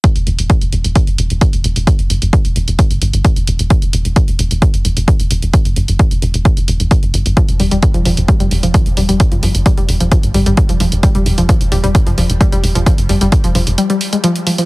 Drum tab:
HH |xxxxxxxxxxxxxxxx|xxxxxxxxxxxxxxxx|xxxxxxxxxxxxxxxx|xxxxxxxxxxxxxxxx|
BD |o---o---o---o---|o---o---o---o---|o---o---o---o---|o---o---o---o---|

HH |xxoxxxoxxxoxxxox|xxoxxxoxxxoxxxox|xxoxxxoxxxoxxxox|xxoxxxoxxxoxxxox|
BD |o---o---o---o---|o---o---o---o---|o---o---o---o---|o---o-----------|